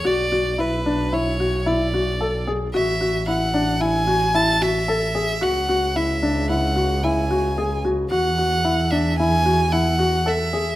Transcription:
<<
  \new Staff \with { instrumentName = "Violin" } { \time 5/4 \key b \dorian \tempo 4 = 112 d''4 b'4 cis''4 d''4. r8 | e''4 fis''4 gis''4 a''8 e''4. | fis''4 e''4 fis''4 gis''4. r8 | fis''4. e''8 gis''4 fis''4 e''4 | }
  \new Staff \with { instrumentName = "Felt piano" } { \time 5/4 \key b \dorian fis'8 fis'8 e'8 d'8 e'8 fis'8 e'8 fis'8 a'8 gis'8 | fis'8 fis'8 e'8 d'8 e'8 fis'8 e'8 fis'8 a'8 gis'8 | fis'8 fis'8 e'8 d'8 e'8 fis'8 e'8 fis'8 gis'8 fis'8 | fis'8 fis'8 e'8 d'8 e'8 fis'8 e'8 fis'8 a'8 gis'8 | }
  \new Staff \with { instrumentName = "Double bass" } { \clef bass \time 5/4 \key b \dorian b,,1~ b,,4 | a,,1~ a,,4 | cis,1~ cis,4 | e,1~ e,4 | }
>>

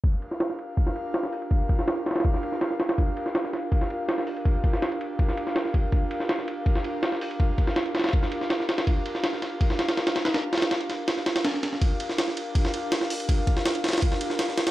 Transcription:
<<
  \new Staff \with { instrumentName = "Analog synth pad" } { \time 4/4 \key g \minor \tempo 4 = 163 r4. <d' f' g' bes' f''>2~ <d' f' g' bes' f''>8 | r4. <d' f' g' bes' f''>2~ <d' f' g' bes' f''>8 | r4. <d' f' g' bes' f''>2~ <d' f' g' bes' f''>8 | r4. <d' f' g' bes' f''>2~ <d' f' g' bes' f''>8 |
r4. <d' f' g' bes' f''>2~ <d' f' g' bes' f''>8 | r4. <d' f' g' bes' f''>2~ <d' f' g' bes' f''>8 | r4. <d' f' g' bes' f''>2~ <d' f' g' bes' f''>8 | r4. <d' f' g' bes' f''>2~ <d' f' g' bes' f''>8 |
r4. <d' f' g' bes' f''>2~ <d' f' g' bes' f''>8 | r4. <d' f' g' bes' f''>2~ <d' f' g' bes' f''>8 | }
  \new DrumStaff \with { instrumentName = "Drums" } \drummode { \time 4/4 <bd cymr>8 cymr16 sn16 <cymr sn>16 sn16 cymr8 <bd cymr>16 sn16 cymr8 <cymr sn>16 sn16 hho16 cymr16 | <bd cymr>8 <bd cymr>16 sn16 <cymr sn>16 cymr16 <cymr sn>32 <cymr sn>32 <cymr sn>32 <cymr sn>32 <bd cymr>16 sn16 cymr16 sn16 <cymr sn>16 sn16 <cymr sn>16 <cymr sn>16 | <bd cymr>8 cymr16 sn16 <cymr sn>16 sn16 <cymr sn>8 <bd cymr>16 sn16 cymr8 <cymr sn>16 sn16 hho16 cymr16 | <bd cymr>8 <bd cymr>16 sn16 <cymr sn>16 cymr16 cymr8 <bd cymr>16 sn16 cymr16 sn16 <cymr sn>16 sn16 <bd cymr>8 |
<bd cymr>8 cymr16 sn16 <cymr sn>16 sn16 cymr8 <bd cymr>16 sn16 cymr8 <cymr sn>16 sn16 hho16 cymr16 | <bd cymr>8 <bd cymr>16 sn16 <cymr sn>16 cymr16 <cymr sn>32 <cymr sn>32 <cymr sn>32 <cymr sn>32 <bd cymr>16 sn16 cymr16 sn16 <cymr sn>16 sn16 <cymr sn>16 <cymr sn>16 | <bd cymr>8 cymr16 sn16 <cymr sn>16 sn16 <cymr sn>8 <bd cymr>16 sn16 <cymr sn>16 <cymr sn>16 <cymr sn>16 <cymr sn>16 <cymr sn>16 <cymr sn>16 | <cymr sn>8 <cymr sn>32 <cymr sn>32 <cymr sn>16 <cymr sn>16 cymr16 <cymr sn>8 <cymr sn>16 sn16 <cymr sn>16 <cymr sn>16 <cymr sn>16 sn16 <cymr sn>16 sn16 |
<bd cymr>8 cymr16 sn16 <cymr sn>16 sn16 cymr8 <bd cymr>16 sn16 cymr8 <cymr sn>16 sn16 hho16 cymr16 | <bd cymr>8 <bd cymr>16 sn16 <cymr sn>16 cymr16 <cymr sn>32 <cymr sn>32 <cymr sn>32 <cymr sn>32 <bd cymr>16 sn16 cymr16 sn16 <cymr sn>16 sn16 <cymr sn>16 <cymr sn>16 | }
>>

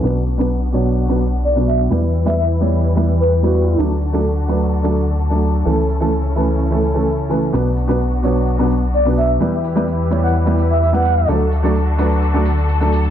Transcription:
<<
  \new Staff \with { instrumentName = "Soft synth lead" } { \time 4/4 \key d \major \tempo 4 = 128 r2. d''16 r16 e''16 r16 | r8. e''16 e''16 r4. b'16 r16 fis'8. | r1 | r1 |
r2. d''16 r16 e''16 r16 | r4. r16 fis''16 r8. e''16 e''16 fis''8. | r1 | }
  \new Staff \with { instrumentName = "String section" } { \time 4/4 \key d \major << { fis'1 | b'1 | a'1~ | a'1 |
fis'1 | b'1 | a'1 | } \\ { <b d'>1 | <e g e'>1 | <d d' fis'>1 | <cis cis' e'>1 |
<b d'>1 | <e e' g'>1 | <d d' fis'>1 | } >> }
  \new Staff \with { instrumentName = "Grand piano" } { \time 4/4 \key d \major <b, fis b d' b'>16 r8 <b, fis b d' b'>16 r8 <b, fis b d' cis''>8. <b, fis b d' b'>16 r8. <b, fis b d' b'>8. | <g b e' b'>16 r8 <g b e' b'>16 r8 <g b e' cis''>8. <g b e' b'>16 r8. <g b e' b'>8. | <fis a d' a'>16 r8 <fis a d' a'>16 r8 <fis a d' b'>8. <fis a d' a'>16 r8. <fis a d' a'>8. | <e a cis' a'>16 r8 <e a cis' a'>16 r8 <e a cis' b'>8. <e a cis' a'>16 r16 <e a cis' a'>16 r8 <e a cis' b'>8 |
<b, fis b d' b'>16 r8 <b, fis b d' b'>16 r8 <b, fis b d' cis''>8. <b, fis b d' b'>16 r8. <b, fis b d' b'>8. | <g b e' b'>16 r8 <g b e' b'>16 r8 <g b e' cis''>8. <g b e' b'>16 r8. <g b e' b'>8. | <fis a d' a'>16 r8 <fis a d' a'>16 r8 <fis a d' b'>8. <fis a d' a'>16 r8. <fis a d' a'>8. | }
  \new Staff \with { instrumentName = "Analog synth bass" } { \clef bass \time 4/4 \key d \major b,,1 | e,1 | d,1 | cis,1 |
b,,1 | e,1 | d,1 | }
  \new DrumStaff \with { instrumentName = "Drums" } \drummode { \time 4/4 <hh tamb>16 hh16 <hho tamb>16 <hh tamb>16 <hh tamb>16 hh16 <hho tamb>16 <hh tamb>16 <hh tamb>16 hh16 <hho tamb>16 <hh tamb>16 <hh tamb>16 <hh tamb>16 <hho tamb>16 <hh tamb>16 | <hh tamb>16 hh16 <hho tamb>16 <hh tamb>16 <hh tamb>16 hh16 <hho tamb>16 <hh tamb>16 <hh tamb>16 hh16 <hho tamb>16 <hh tamb>16 <hh tamb>16 <hh tamb>16 <hho tamb>16 <hh tamb>16 | <hh tamb>16 hh16 <hho tamb>16 <hh tamb>16 <hh tamb>16 hh16 <hho tamb>16 <hh tamb>16 <hh tamb>16 hh16 <hho tamb>16 <hh tamb>16 <hh tamb>16 <hh tamb>16 <hho tamb>16 <hh tamb>16 | <hh tamb>16 <hh tamb>16 <hho tamb>16 <hh tamb>16 <hh tamb>16 <hh tamb>16 <hho tamb>16 <hh tamb>16 <hh tamb>16 hh16 <hho tamb>16 <hh tamb>16 <hh tamb>16 <hh tamb>16 <hho tamb>16 <hh tamb>16 |
<hh tamb>16 hh16 <hho tamb>16 <hh tamb>16 <hh tamb>16 hh16 <hho tamb>16 <hh tamb>16 <hh tamb>16 hh16 <hho tamb>16 <hh tamb>16 <hh tamb>16 <hh tamb>16 <hho tamb>16 tamb16 | <hh tamb>16 hh16 <hho tamb>16 <hh tamb>16 <hh tamb>16 hh16 <hho tamb>16 <hh tamb>16 <hh tamb>16 hh16 <hho tamb>16 <hh tamb>16 <hh tamb>16 <hh tamb>16 <hho tamb>16 <hh tamb>16 | <hh tamb>16 hh16 <hho tamb>16 tamb16 <hh tamb>16 hh16 <hho tamb>16 <hh tamb>16 <hh tamb>16 hh16 <hho tamb>16 <hh tamb>16 <hh tamb>16 <hh tamb>16 <hho tamb>16 <hh tamb>16 | }
>>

